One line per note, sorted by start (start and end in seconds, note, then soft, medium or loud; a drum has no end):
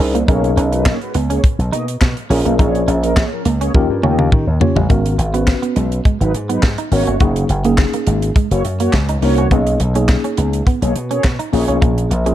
0.00 0.22 C2 medium
0.00 0.11 C#4 medium
0.00 0.17 C#4 medium
0.00 0.17 D#4 medium
0.00 0.17 G#4 medium
0.00 0.17 A#4 medium
0.00 open hi-hat medium
0.15 0.25 A#3 medium
0.15 closed hi-hat soft
0.28 0.51 B1 loud
0.28 0.51 A#3 medium
0.28 0.96 C#4 medium
0.28 0.40 D#4 medium
0.28 0.96 D#4 medium
0.28 0.52 G#4 medium
0.28 0.96 G#4 medium
0.28 0.96 A#4 medium
0.28 0.51 C#5 loud
0.28 kick loud
0.28 closed hi-hat medium
0.44 closed hi-hat soft
0.57 0.92 B1 loud
0.57 0.69 C#4 medium
0.57 closed hi-hat medium
0.72 0.83 G#3 medium
0.72 0.83 F#4 medium
0.72 0.83 B4 medium
0.72 muted clean electric guitar stroke soft
0.72 closed hi-hat medium
0.86 0.98 A#3 medium
0.86 0.98 G#4 medium
0.86 0.99 C#5 loud
0.86 muted clean electric guitar stroke soft
0.86 kick loud
0.86 snare loud
0.86 clap medium
1.01 1.13 G#3 medium
1.01 1.13 F#4 medium
1.01 1.12 B4 medium
1.01 closed hi-hat soft
1.14 1.38 C#2 medium
1.14 1.27 B3 medium
1.14 closed hi-hat medium
1.30 1.41 A#3 loud
1.30 1.41 C#4 medium
1.30 1.41 G#4 loud
1.30 1.41 C#5 loud
1.30 closed hi-hat medium
1.44 kick loud
1.44 closed hi-hat medium
1.59 1.70 B1 loud
1.59 closed hi-hat soft
1.72 1.95 B2 loud
1.72 1.86 A#3 medium
1.72 1.84 D#4 medium
1.72 1.86 G#4 medium
1.72 1.85 D#5 medium
1.72 closed hi-hat medium
1.88 closed hi-hat medium
2.01 2.14 B2 loud
2.01 muted clean electric guitar stroke soft
2.01 kick loud
2.01 snare loud
2.01 clap medium
2.17 closed hi-hat soft
2.30 2.42 A#1 loud
2.30 3.23 C#4 medium
2.30 2.42 C#4 medium
2.30 3.23 F4 medium
2.30 3.23 G#4 medium
2.30 3.23 A#4 medium
2.30 open hi-hat medium
2.45 2.56 B1 medium
2.45 2.56 A#3 medium
2.45 closed hi-hat soft
2.59 2.82 A#1 loud
2.59 2.83 A#3 medium
2.59 2.71 D#4 medium
2.59 2.83 G#4 medium
2.59 2.83 C#5 loud
2.59 kick loud
2.59 closed hi-hat medium
2.75 closed hi-hat soft
2.88 3.23 A#1 loud
2.88 3.00 C#4 medium
2.88 closed hi-hat medium
3.03 3.14 F3 medium
3.03 3.14 C#4 medium
3.03 3.14 A#4 loud
3.03 muted clean electric guitar stroke soft
3.03 closed hi-hat medium
3.17 3.29 A#3 medium
3.17 3.29 G#4 medium
3.17 3.29 C#5 medium
3.17 muted clean electric guitar stroke medium
3.17 kick loud
3.17 snare loud
3.17 clap medium
3.32 3.43 F3 medium
3.32 3.43 C#4 medium
3.32 3.43 A#4 medium
3.45 3.68 C#2 medium
3.45 3.57 A#3 medium
3.45 closed hi-hat medium
3.61 3.72 A#3 loud
3.61 3.72 C#4 medium
3.61 3.72 G#4 loud
3.61 3.72 C#5 loud
3.61 closed hi-hat medium
3.74 3.86 D#2 loud
3.74 4.44 C#4 medium
3.74 4.44 F4 medium
3.74 4.45 G4 medium
3.74 4.45 A#4 loud
3.74 kick loud
3.74 high tom medium
3.89 4.00 G2 medium
4.03 4.15 D#2 loud
4.03 4.16 A#3 medium
4.03 4.15 C#4 medium
4.03 4.16 G4 medium
4.03 4.16 D#5 medium
4.03 mid tom medium
4.18 4.29 D#2 medium
4.18 mid tom medium
4.32 4.44 D#3 loud
4.32 muted clean electric guitar stroke soft
4.32 kick loud
4.32 mid tom medium
4.47 4.58 D#2 loud
4.61 4.73 A#3 medium
4.61 4.78 C#4 medium
4.61 4.78 F4 medium
4.61 4.79 G4 medium
4.61 4.79 C#5 medium
4.61 floor tom loud
4.76 4.87 A1 medium
4.76 4.87 G3 medium
4.76 floor tom loud
4.90 5.13 G#1 loud
4.90 5.02 G#3 medium
4.90 5.15 B3 medium
4.90 5.15 C#4 medium
4.90 5.15 F#4 medium
4.90 5.15 A#4 medium
4.90 kick loud
4.90 closed hi-hat medium
5.06 closed hi-hat medium
5.18 5.53 G#1 medium
5.18 muted clean electric guitar stroke soft
5.18 closed hi-hat medium
5.34 6.00 B3 medium
5.34 5.44 B3 medium
5.34 6.01 C#4 medium
5.34 6.01 F#4 medium
5.34 6.01 B4 medium
5.34 closed hi-hat medium
5.47 muted clean electric guitar stroke soft
5.47 kick loud
5.47 snare loud
5.47 clap medium
5.62 5.73 B3 medium
5.62 closed hi-hat medium
5.76 5.99 B1 medium
5.76 5.88 G#3 medium
5.76 closed hi-hat medium
5.92 closed hi-hat soft
6.05 6.17 G#3 medium
6.05 kick loud
6.05 closed hi-hat medium
6.20 6.31 G#1 medium
6.20 6.32 F#3 loud
6.20 6.32 D#4 loud
6.20 6.32 B4 loud
6.20 muted clean electric guitar stroke soft
6.20 closed hi-hat medium
6.34 6.57 G#2 loud
6.34 closed hi-hat medium
6.49 6.61 F#3 medium
6.49 6.60 B3 medium
6.49 6.61 D#4 loud
6.49 6.61 B4 loud
6.49 closed hi-hat medium
6.63 6.75 G#2 loud
6.63 kick loud
6.63 snare loud
6.63 clap medium
6.78 6.89 D#4 medium
6.78 closed hi-hat medium
6.91 7.04 G#1 medium
6.91 7.16 A#3 loud
6.91 7.09 B3 medium
6.91 7.09 C#4 medium
6.91 7.16 F#4 loud
6.91 7.09 F#4 medium
6.91 7.10 A#4 medium
6.91 7.16 C#5 loud
6.91 muted clean electric guitar stroke soft
6.91 open hi-hat medium
7.07 7.18 G1 medium
7.07 7.18 C#4 medium
7.07 closed hi-hat soft
7.20 7.43 F#1 loud
7.20 7.46 A#3 medium
7.20 7.46 C#4 medium
7.20 7.46 D#4 medium
7.20 7.32 F#4 medium
7.20 7.46 G#4 medium
7.20 kick loud
7.20 closed hi-hat medium
7.36 closed hi-hat medium
7.49 7.84 F#1 loud
7.49 muted clean electric guitar stroke soft
7.49 closed hi-hat medium
7.64 8.31 A#3 medium
7.64 7.75 A#3 medium
7.64 8.31 C#4 medium
7.64 8.31 D#4 medium
7.64 8.32 G#4 medium
7.64 closed hi-hat medium
7.78 muted clean electric guitar stroke soft
7.78 kick loud
7.78 snare loud
7.78 clap medium
7.93 8.04 A#3 medium
7.93 closed hi-hat medium
8.07 8.30 G#1 medium
8.07 8.19 G#3 medium
8.07 closed hi-hat medium
8.22 closed hi-hat medium
8.36 8.48 G#3 medium
8.36 kick loud
8.36 closed hi-hat medium
8.51 8.62 F#1 loud
8.51 8.63 A#3 loud
8.51 8.63 F#4 loud
8.51 8.63 C#5 loud
8.51 muted clean electric guitar stroke soft
8.51 closed hi-hat medium
8.64 8.87 F#2 loud
8.64 closed hi-hat medium
8.80 8.91 A#3 medium
8.80 8.92 A#3 loud
8.80 8.92 F#4 loud
8.80 8.92 C#5 loud
8.80 closed hi-hat medium
8.93 9.16 C#2 medium
8.93 kick loud
8.93 snare loud
8.93 clap medium
9.09 9.20 D#4 medium
9.09 closed hi-hat medium
9.22 9.45 C2 medium
9.22 9.40 A#3 medium
9.22 9.48 A#3 loud
9.22 9.40 C#4 medium
9.22 9.40 D#4 medium
9.22 9.47 F#4 loud
9.22 9.40 A#4 medium
9.22 9.47 C#5 loud
9.22 muted clean electric guitar stroke soft
9.22 open hi-hat medium
9.38 9.49 C#4 medium
9.38 closed hi-hat soft
9.51 9.74 B1 loud
9.51 9.77 A#3 medium
9.51 9.63 B3 medium
9.51 9.77 C#4 medium
9.51 9.77 D#4 medium
9.51 9.77 G#4 medium
9.51 kick loud
9.51 closed hi-hat medium
9.67 closed hi-hat medium
9.80 10.15 B1 loud
9.80 muted clean electric guitar stroke soft
9.80 closed hi-hat medium
9.95 10.62 A#3 medium
9.95 10.62 C#4 medium
9.95 10.06 C#4 medium
9.95 10.62 D#4 medium
9.95 10.62 G#4 medium
9.95 closed hi-hat medium
10.09 muted clean electric guitar stroke soft
10.09 kick loud
10.09 snare loud
10.09 clap medium
10.24 10.35 C#4 medium
10.24 closed hi-hat soft
10.37 10.61 C#2 medium
10.37 10.50 B3 medium
10.37 closed hi-hat medium
10.53 closed hi-hat soft
10.67 10.79 B3 medium
10.67 kick loud
10.67 closed hi-hat medium
10.82 10.93 B1 medium
10.82 10.94 A#3 medium
10.82 10.94 G#4 loud
10.82 10.94 C#5 loud
10.82 muted clean electric guitar stroke soft
10.82 closed hi-hat medium
10.96 11.18 B2 loud
10.96 closed hi-hat medium
11.11 11.23 A#3 loud
11.11 11.21 C#4 medium
11.11 11.22 G#4 loud
11.11 11.23 C#5 loud
11.11 closed hi-hat medium
11.24 11.37 B2 loud
11.24 kick loud
11.24 snare loud
11.24 clap medium
11.39 11.50 D#4 medium
11.39 closed hi-hat medium
11.52 11.65 A#1 medium
11.52 12.11 A#3 medium
11.52 11.78 A#3 loud
11.52 12.11 C#4 medium
11.52 12.11 F4 medium
11.52 11.78 G#4 loud
11.52 12.11 G#4 medium
11.52 11.78 C#5 loud
11.52 muted clean electric guitar stroke soft
11.52 open hi-hat medium
11.68 11.79 B1 medium
11.68 11.79 C#4 medium
11.68 closed hi-hat soft
11.82 12.05 A#1 loud
11.82 11.94 A#3 medium
11.82 kick loud
11.82 closed hi-hat medium
11.98 closed hi-hat medium
12.11 12.35 A#1 loud
12.11 muted clean electric guitar stroke soft
12.11 closed hi-hat medium
12.26 12.35 A#3 medium
12.26 12.35 C#4 medium
12.26 12.35 F4 medium
12.26 12.35 G#4 medium
12.26 closed hi-hat medium